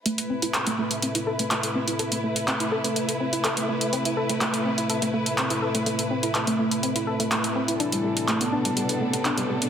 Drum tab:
HH |xx-xxx-xxx-xxx-x|xx-xxx-xxx-xxx-x|xx-xxx-xxx-xxx-x|xx-xxx-xxx-xxx-x|
CP |----x-------x---|----x-------x---|----x-------x---|----x-------x---|

HH |xx-xxx-xxx-xxx-x|
CP |----x-------x---|